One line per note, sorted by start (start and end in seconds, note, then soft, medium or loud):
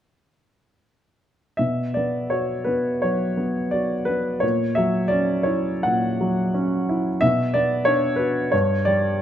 1.57 3.00 B2 soft
1.57 1.95 E5 medium
1.94 2.54 B3 soft
1.94 2.31 D5 soft
2.30 2.90 F#4 soft
2.30 2.67 C#5 medium
2.64 3.24 B3 soft
2.64 3.02 B4 soft
3.02 3.60 F#3 soft
3.02 3.73 C#5 medium
3.37 3.94 B3 soft
3.71 4.29 F#4 soft
3.71 4.07 D5 medium
4.05 4.42 B3 soft
4.05 4.41 B4 medium
4.40 5.81 A#2 soft
4.40 4.75 C#5 medium
4.75 5.33 F#3 soft
4.75 5.10 E5 medium
5.08 5.71 C#4 soft
5.08 5.46 D5 medium
5.43 6.07 E4 soft
5.43 5.84 C#5 medium
5.83 7.18 A#2 soft
5.83 6.87 F#5 medium
6.21 6.75 F#3 soft
6.54 7.08 C#4 soft
6.89 7.22 E4 soft
7.21 8.49 B2 soft
7.21 7.53 E5 medium
7.54 8.06 B3 soft
7.54 7.86 D5 medium
7.85 8.39 D4 soft
7.85 8.18 C#5 medium
8.16 8.53 F#4 soft
8.16 8.51 B4 soft
8.52 9.22 G2 soft
8.52 8.87 C#5 medium
8.85 9.22 G3 soft
8.85 9.22 D5 medium